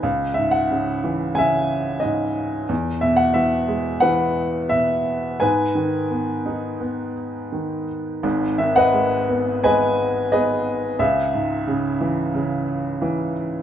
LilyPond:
<<
  \new Staff \with { instrumentName = "Upright piano" } { \time 4/4 \key gis \minor \tempo 4 = 88 << { r8 e''16 fis''4~ fis''16 gis''4 dis''4 | r8 e''16 fis''16 e''4 fis''4 e''4 | gis''2.~ gis''8 r8 | r8 e''16 fis''4~ fis''16 gis''4 dis''4 |
e''2.~ e''8 r8 | } \\ { r2 e''2 | r2 b'2 | b'2.~ b'8 r8 | r8. <b' dis''>4~ <b' dis''>16 <b' dis''>4 <gis' b'>4 |
gis'2.~ gis'8 r8 | } >> }
  \new Staff \with { instrumentName = "Upright piano" } { \clef bass \time 4/4 \key gis \minor cis,8 gis,8 cis8 e8 cis4 gis,4 | e,8 b,8 e8 gis8 e4 b,4 | gis,8 dis8 b8 dis'8 b4 dis4 | <gis,, gis,>8 dis8 gis8 b8 gis4 b4 |
cis,8 gis,8 cis8 e8 cis4 e4 | }
>>